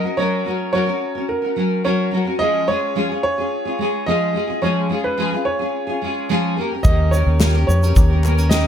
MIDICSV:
0, 0, Header, 1, 6, 480
1, 0, Start_track
1, 0, Tempo, 555556
1, 156, Time_signature, 4, 2, 24, 8
1, 7492, End_track
2, 0, Start_track
2, 0, Title_t, "Upright piano"
2, 0, Program_c, 0, 0
2, 0, Note_on_c, 0, 75, 106
2, 149, Note_on_c, 0, 73, 98
2, 166, Note_off_c, 0, 75, 0
2, 615, Note_off_c, 0, 73, 0
2, 628, Note_on_c, 0, 73, 99
2, 1078, Note_off_c, 0, 73, 0
2, 1113, Note_on_c, 0, 70, 89
2, 1596, Note_on_c, 0, 73, 90
2, 1609, Note_off_c, 0, 70, 0
2, 1931, Note_off_c, 0, 73, 0
2, 2064, Note_on_c, 0, 75, 109
2, 2314, Note_on_c, 0, 73, 107
2, 2318, Note_off_c, 0, 75, 0
2, 2781, Note_off_c, 0, 73, 0
2, 2793, Note_on_c, 0, 73, 109
2, 3480, Note_off_c, 0, 73, 0
2, 3512, Note_on_c, 0, 75, 101
2, 3992, Note_on_c, 0, 73, 87
2, 4009, Note_off_c, 0, 75, 0
2, 4356, Note_on_c, 0, 71, 89
2, 4365, Note_off_c, 0, 73, 0
2, 4710, Note_on_c, 0, 73, 95
2, 4727, Note_off_c, 0, 71, 0
2, 5639, Note_off_c, 0, 73, 0
2, 5902, Note_on_c, 0, 75, 99
2, 6145, Note_on_c, 0, 73, 95
2, 6157, Note_off_c, 0, 75, 0
2, 6614, Note_off_c, 0, 73, 0
2, 6627, Note_on_c, 0, 73, 95
2, 7339, Note_on_c, 0, 75, 98
2, 7375, Note_off_c, 0, 73, 0
2, 7492, Note_off_c, 0, 75, 0
2, 7492, End_track
3, 0, Start_track
3, 0, Title_t, "Nylon-string guitar"
3, 0, Program_c, 1, 24
3, 31, Note_on_c, 1, 70, 52
3, 43, Note_on_c, 1, 66, 52
3, 58, Note_on_c, 1, 61, 47
3, 149, Note_off_c, 1, 61, 0
3, 149, Note_on_c, 1, 54, 81
3, 154, Note_off_c, 1, 70, 0
3, 156, Note_off_c, 1, 66, 0
3, 160, Note_on_c, 1, 61, 85
3, 166, Note_on_c, 1, 66, 94
3, 171, Note_on_c, 1, 70, 98
3, 374, Note_off_c, 1, 54, 0
3, 384, Note_on_c, 1, 54, 62
3, 386, Note_off_c, 1, 61, 0
3, 396, Note_on_c, 1, 61, 64
3, 397, Note_off_c, 1, 66, 0
3, 404, Note_off_c, 1, 70, 0
3, 408, Note_on_c, 1, 66, 69
3, 416, Note_on_c, 1, 70, 73
3, 617, Note_off_c, 1, 54, 0
3, 623, Note_off_c, 1, 61, 0
3, 628, Note_on_c, 1, 54, 85
3, 634, Note_off_c, 1, 66, 0
3, 634, Note_on_c, 1, 61, 87
3, 635, Note_off_c, 1, 70, 0
3, 644, Note_on_c, 1, 66, 89
3, 645, Note_on_c, 1, 70, 94
3, 735, Note_off_c, 1, 70, 0
3, 745, Note_on_c, 1, 70, 64
3, 750, Note_off_c, 1, 66, 0
3, 752, Note_off_c, 1, 54, 0
3, 755, Note_off_c, 1, 61, 0
3, 760, Note_on_c, 1, 66, 56
3, 773, Note_on_c, 1, 61, 49
3, 982, Note_off_c, 1, 70, 0
3, 993, Note_on_c, 1, 70, 53
3, 998, Note_off_c, 1, 66, 0
3, 1004, Note_off_c, 1, 61, 0
3, 1010, Note_on_c, 1, 66, 44
3, 1024, Note_on_c, 1, 61, 52
3, 1215, Note_off_c, 1, 70, 0
3, 1225, Note_on_c, 1, 70, 47
3, 1236, Note_off_c, 1, 66, 0
3, 1246, Note_on_c, 1, 66, 46
3, 1248, Note_off_c, 1, 61, 0
3, 1259, Note_on_c, 1, 61, 47
3, 1344, Note_off_c, 1, 61, 0
3, 1348, Note_on_c, 1, 54, 70
3, 1351, Note_off_c, 1, 66, 0
3, 1351, Note_off_c, 1, 70, 0
3, 1355, Note_on_c, 1, 61, 70
3, 1361, Note_on_c, 1, 66, 68
3, 1374, Note_on_c, 1, 70, 67
3, 1582, Note_off_c, 1, 54, 0
3, 1586, Note_off_c, 1, 61, 0
3, 1593, Note_on_c, 1, 54, 86
3, 1596, Note_off_c, 1, 66, 0
3, 1597, Note_on_c, 1, 61, 99
3, 1600, Note_off_c, 1, 70, 0
3, 1607, Note_on_c, 1, 66, 94
3, 1610, Note_on_c, 1, 70, 96
3, 1815, Note_off_c, 1, 54, 0
3, 1826, Note_on_c, 1, 54, 66
3, 1828, Note_off_c, 1, 61, 0
3, 1838, Note_on_c, 1, 61, 73
3, 1842, Note_off_c, 1, 66, 0
3, 1843, Note_off_c, 1, 70, 0
3, 1851, Note_on_c, 1, 66, 78
3, 1856, Note_on_c, 1, 70, 76
3, 1931, Note_off_c, 1, 70, 0
3, 1941, Note_on_c, 1, 70, 60
3, 1950, Note_off_c, 1, 66, 0
3, 1951, Note_off_c, 1, 54, 0
3, 1957, Note_off_c, 1, 61, 0
3, 1960, Note_on_c, 1, 66, 56
3, 1971, Note_on_c, 1, 61, 50
3, 2066, Note_off_c, 1, 61, 0
3, 2066, Note_on_c, 1, 53, 73
3, 2069, Note_off_c, 1, 70, 0
3, 2070, Note_on_c, 1, 56, 70
3, 2077, Note_off_c, 1, 66, 0
3, 2077, Note_on_c, 1, 61, 81
3, 2081, Note_on_c, 1, 65, 81
3, 2084, Note_on_c, 1, 68, 82
3, 2298, Note_off_c, 1, 56, 0
3, 2309, Note_on_c, 1, 56, 71
3, 2311, Note_off_c, 1, 53, 0
3, 2314, Note_off_c, 1, 61, 0
3, 2318, Note_off_c, 1, 65, 0
3, 2320, Note_off_c, 1, 68, 0
3, 2325, Note_on_c, 1, 61, 72
3, 2332, Note_on_c, 1, 65, 70
3, 2340, Note_on_c, 1, 68, 76
3, 2546, Note_off_c, 1, 56, 0
3, 2550, Note_off_c, 1, 61, 0
3, 2550, Note_on_c, 1, 53, 75
3, 2554, Note_off_c, 1, 65, 0
3, 2557, Note_on_c, 1, 56, 80
3, 2560, Note_on_c, 1, 61, 86
3, 2563, Note_off_c, 1, 68, 0
3, 2564, Note_on_c, 1, 65, 87
3, 2574, Note_on_c, 1, 68, 82
3, 2663, Note_off_c, 1, 68, 0
3, 2673, Note_off_c, 1, 53, 0
3, 2673, Note_on_c, 1, 68, 62
3, 2677, Note_off_c, 1, 56, 0
3, 2678, Note_off_c, 1, 61, 0
3, 2680, Note_off_c, 1, 65, 0
3, 2691, Note_on_c, 1, 65, 53
3, 2704, Note_on_c, 1, 61, 44
3, 2909, Note_off_c, 1, 68, 0
3, 2919, Note_off_c, 1, 65, 0
3, 2919, Note_on_c, 1, 68, 56
3, 2929, Note_on_c, 1, 65, 50
3, 2930, Note_off_c, 1, 61, 0
3, 2949, Note_on_c, 1, 61, 51
3, 3145, Note_off_c, 1, 68, 0
3, 3155, Note_on_c, 1, 68, 59
3, 3161, Note_off_c, 1, 65, 0
3, 3171, Note_on_c, 1, 65, 52
3, 3173, Note_off_c, 1, 61, 0
3, 3187, Note_on_c, 1, 61, 49
3, 3271, Note_on_c, 1, 56, 65
3, 3276, Note_off_c, 1, 68, 0
3, 3278, Note_off_c, 1, 61, 0
3, 3284, Note_off_c, 1, 65, 0
3, 3288, Note_on_c, 1, 61, 70
3, 3293, Note_on_c, 1, 65, 73
3, 3303, Note_on_c, 1, 68, 81
3, 3511, Note_off_c, 1, 56, 0
3, 3516, Note_on_c, 1, 53, 85
3, 3517, Note_off_c, 1, 61, 0
3, 3517, Note_off_c, 1, 65, 0
3, 3521, Note_on_c, 1, 56, 82
3, 3524, Note_off_c, 1, 68, 0
3, 3527, Note_on_c, 1, 61, 93
3, 3527, Note_on_c, 1, 65, 100
3, 3534, Note_on_c, 1, 68, 94
3, 3734, Note_off_c, 1, 56, 0
3, 3744, Note_on_c, 1, 56, 54
3, 3746, Note_off_c, 1, 61, 0
3, 3756, Note_off_c, 1, 53, 0
3, 3756, Note_on_c, 1, 61, 59
3, 3758, Note_off_c, 1, 65, 0
3, 3765, Note_off_c, 1, 68, 0
3, 3768, Note_on_c, 1, 65, 70
3, 3776, Note_on_c, 1, 68, 72
3, 3855, Note_off_c, 1, 68, 0
3, 3866, Note_on_c, 1, 68, 56
3, 3871, Note_off_c, 1, 56, 0
3, 3874, Note_off_c, 1, 65, 0
3, 3876, Note_off_c, 1, 61, 0
3, 3885, Note_on_c, 1, 65, 49
3, 3899, Note_on_c, 1, 61, 43
3, 3988, Note_on_c, 1, 53, 85
3, 3990, Note_off_c, 1, 61, 0
3, 3991, Note_off_c, 1, 68, 0
3, 3994, Note_off_c, 1, 65, 0
3, 3998, Note_on_c, 1, 56, 75
3, 4001, Note_on_c, 1, 61, 98
3, 4005, Note_on_c, 1, 65, 83
3, 4010, Note_on_c, 1, 68, 92
3, 4217, Note_off_c, 1, 56, 0
3, 4227, Note_off_c, 1, 61, 0
3, 4228, Note_on_c, 1, 56, 62
3, 4232, Note_off_c, 1, 53, 0
3, 4237, Note_off_c, 1, 65, 0
3, 4237, Note_on_c, 1, 61, 67
3, 4243, Note_off_c, 1, 68, 0
3, 4247, Note_on_c, 1, 65, 71
3, 4252, Note_on_c, 1, 68, 72
3, 4464, Note_off_c, 1, 56, 0
3, 4471, Note_off_c, 1, 61, 0
3, 4471, Note_on_c, 1, 53, 84
3, 4474, Note_off_c, 1, 65, 0
3, 4474, Note_on_c, 1, 56, 74
3, 4480, Note_off_c, 1, 68, 0
3, 4481, Note_on_c, 1, 61, 77
3, 4484, Note_on_c, 1, 65, 84
3, 4490, Note_on_c, 1, 68, 93
3, 4582, Note_off_c, 1, 68, 0
3, 4593, Note_on_c, 1, 68, 57
3, 4594, Note_off_c, 1, 53, 0
3, 4596, Note_off_c, 1, 56, 0
3, 4599, Note_off_c, 1, 61, 0
3, 4601, Note_off_c, 1, 65, 0
3, 4614, Note_on_c, 1, 65, 62
3, 4627, Note_on_c, 1, 61, 47
3, 4820, Note_off_c, 1, 68, 0
3, 4831, Note_on_c, 1, 68, 57
3, 4834, Note_off_c, 1, 65, 0
3, 4844, Note_on_c, 1, 65, 51
3, 4849, Note_off_c, 1, 61, 0
3, 4860, Note_on_c, 1, 61, 46
3, 5060, Note_off_c, 1, 68, 0
3, 5070, Note_on_c, 1, 68, 55
3, 5078, Note_off_c, 1, 65, 0
3, 5088, Note_off_c, 1, 61, 0
3, 5088, Note_on_c, 1, 65, 48
3, 5103, Note_on_c, 1, 61, 40
3, 5193, Note_off_c, 1, 68, 0
3, 5196, Note_off_c, 1, 61, 0
3, 5198, Note_on_c, 1, 56, 62
3, 5202, Note_off_c, 1, 65, 0
3, 5206, Note_on_c, 1, 61, 71
3, 5218, Note_on_c, 1, 65, 64
3, 5226, Note_on_c, 1, 68, 72
3, 5431, Note_off_c, 1, 56, 0
3, 5437, Note_on_c, 1, 53, 102
3, 5438, Note_off_c, 1, 61, 0
3, 5441, Note_on_c, 1, 56, 101
3, 5445, Note_off_c, 1, 65, 0
3, 5445, Note_off_c, 1, 68, 0
3, 5448, Note_on_c, 1, 61, 112
3, 5455, Note_on_c, 1, 68, 108
3, 5456, Note_on_c, 1, 65, 119
3, 5672, Note_off_c, 1, 56, 0
3, 5676, Note_on_c, 1, 58, 81
3, 5677, Note_off_c, 1, 53, 0
3, 5678, Note_off_c, 1, 61, 0
3, 5686, Note_off_c, 1, 65, 0
3, 5686, Note_off_c, 1, 68, 0
3, 5688, Note_on_c, 1, 61, 83
3, 5698, Note_on_c, 1, 67, 78
3, 5709, Note_on_c, 1, 70, 87
3, 5791, Note_off_c, 1, 70, 0
3, 5796, Note_off_c, 1, 58, 0
3, 5802, Note_off_c, 1, 61, 0
3, 5802, Note_on_c, 1, 70, 58
3, 5804, Note_off_c, 1, 67, 0
3, 5815, Note_on_c, 1, 67, 51
3, 5832, Note_on_c, 1, 61, 46
3, 5919, Note_off_c, 1, 70, 0
3, 5925, Note_on_c, 1, 51, 70
3, 5926, Note_off_c, 1, 67, 0
3, 5928, Note_off_c, 1, 61, 0
3, 5936, Note_on_c, 1, 58, 83
3, 5938, Note_on_c, 1, 61, 86
3, 5944, Note_on_c, 1, 67, 91
3, 5944, Note_on_c, 1, 70, 91
3, 6143, Note_off_c, 1, 58, 0
3, 6152, Note_off_c, 1, 61, 0
3, 6154, Note_on_c, 1, 58, 64
3, 6161, Note_off_c, 1, 51, 0
3, 6162, Note_on_c, 1, 61, 61
3, 6164, Note_off_c, 1, 67, 0
3, 6169, Note_off_c, 1, 70, 0
3, 6175, Note_on_c, 1, 67, 69
3, 6179, Note_on_c, 1, 70, 73
3, 6396, Note_off_c, 1, 58, 0
3, 6400, Note_off_c, 1, 61, 0
3, 6401, Note_on_c, 1, 51, 82
3, 6406, Note_off_c, 1, 67, 0
3, 6406, Note_off_c, 1, 70, 0
3, 6408, Note_on_c, 1, 58, 85
3, 6411, Note_on_c, 1, 61, 79
3, 6415, Note_on_c, 1, 67, 89
3, 6417, Note_on_c, 1, 70, 98
3, 6512, Note_off_c, 1, 70, 0
3, 6519, Note_off_c, 1, 51, 0
3, 6523, Note_off_c, 1, 58, 0
3, 6523, Note_on_c, 1, 70, 57
3, 6524, Note_off_c, 1, 61, 0
3, 6526, Note_off_c, 1, 67, 0
3, 6543, Note_on_c, 1, 67, 56
3, 6551, Note_on_c, 1, 61, 51
3, 6753, Note_off_c, 1, 70, 0
3, 6763, Note_on_c, 1, 70, 53
3, 6771, Note_off_c, 1, 67, 0
3, 6774, Note_off_c, 1, 61, 0
3, 6779, Note_on_c, 1, 67, 49
3, 6793, Note_on_c, 1, 61, 41
3, 6984, Note_off_c, 1, 70, 0
3, 6995, Note_on_c, 1, 70, 58
3, 7001, Note_off_c, 1, 67, 0
3, 7012, Note_on_c, 1, 67, 51
3, 7016, Note_off_c, 1, 61, 0
3, 7027, Note_on_c, 1, 61, 42
3, 7116, Note_off_c, 1, 70, 0
3, 7117, Note_on_c, 1, 58, 55
3, 7118, Note_off_c, 1, 61, 0
3, 7125, Note_off_c, 1, 67, 0
3, 7129, Note_on_c, 1, 61, 67
3, 7135, Note_on_c, 1, 67, 76
3, 7143, Note_on_c, 1, 70, 66
3, 7347, Note_off_c, 1, 58, 0
3, 7349, Note_on_c, 1, 51, 91
3, 7354, Note_off_c, 1, 61, 0
3, 7357, Note_off_c, 1, 67, 0
3, 7357, Note_on_c, 1, 58, 91
3, 7361, Note_off_c, 1, 70, 0
3, 7364, Note_on_c, 1, 61, 100
3, 7367, Note_on_c, 1, 67, 92
3, 7372, Note_on_c, 1, 70, 107
3, 7492, Note_off_c, 1, 51, 0
3, 7492, Note_off_c, 1, 58, 0
3, 7492, Note_off_c, 1, 61, 0
3, 7492, Note_off_c, 1, 67, 0
3, 7492, Note_off_c, 1, 70, 0
3, 7492, End_track
4, 0, Start_track
4, 0, Title_t, "Nylon-string guitar"
4, 0, Program_c, 2, 24
4, 6402, Note_on_c, 2, 65, 70
4, 6521, Note_off_c, 2, 65, 0
4, 6644, Note_on_c, 2, 59, 68
4, 6771, Note_off_c, 2, 59, 0
4, 6888, Note_on_c, 2, 67, 67
4, 7127, Note_on_c, 2, 59, 65
4, 7244, Note_off_c, 2, 59, 0
4, 7244, Note_on_c, 2, 61, 56
4, 7349, Note_off_c, 2, 67, 0
4, 7492, Note_off_c, 2, 61, 0
4, 7492, End_track
5, 0, Start_track
5, 0, Title_t, "Fingered electric bass"
5, 0, Program_c, 3, 33
5, 5919, Note_on_c, 3, 39, 106
5, 6249, Note_off_c, 3, 39, 0
5, 6277, Note_on_c, 3, 39, 107
5, 6609, Note_off_c, 3, 39, 0
5, 6639, Note_on_c, 3, 41, 81
5, 6859, Note_off_c, 3, 41, 0
5, 6879, Note_on_c, 3, 39, 111
5, 7492, Note_off_c, 3, 39, 0
5, 7492, End_track
6, 0, Start_track
6, 0, Title_t, "Drums"
6, 5913, Note_on_c, 9, 82, 74
6, 5917, Note_on_c, 9, 36, 121
6, 5999, Note_off_c, 9, 82, 0
6, 6003, Note_off_c, 9, 36, 0
6, 6161, Note_on_c, 9, 82, 60
6, 6247, Note_off_c, 9, 82, 0
6, 6396, Note_on_c, 9, 38, 113
6, 6397, Note_on_c, 9, 82, 81
6, 6399, Note_on_c, 9, 39, 91
6, 6483, Note_off_c, 9, 38, 0
6, 6484, Note_off_c, 9, 82, 0
6, 6485, Note_off_c, 9, 39, 0
6, 6649, Note_on_c, 9, 82, 66
6, 6735, Note_off_c, 9, 82, 0
6, 6765, Note_on_c, 9, 82, 46
6, 6852, Note_off_c, 9, 82, 0
6, 6877, Note_on_c, 9, 82, 83
6, 6880, Note_on_c, 9, 36, 106
6, 6963, Note_off_c, 9, 82, 0
6, 6967, Note_off_c, 9, 36, 0
6, 7122, Note_on_c, 9, 39, 82
6, 7125, Note_on_c, 9, 82, 60
6, 7209, Note_off_c, 9, 39, 0
6, 7212, Note_off_c, 9, 82, 0
6, 7243, Note_on_c, 9, 82, 55
6, 7330, Note_off_c, 9, 82, 0
6, 7351, Note_on_c, 9, 38, 110
6, 7356, Note_on_c, 9, 82, 87
6, 7367, Note_on_c, 9, 39, 90
6, 7437, Note_off_c, 9, 38, 0
6, 7443, Note_off_c, 9, 82, 0
6, 7453, Note_off_c, 9, 39, 0
6, 7492, End_track
0, 0, End_of_file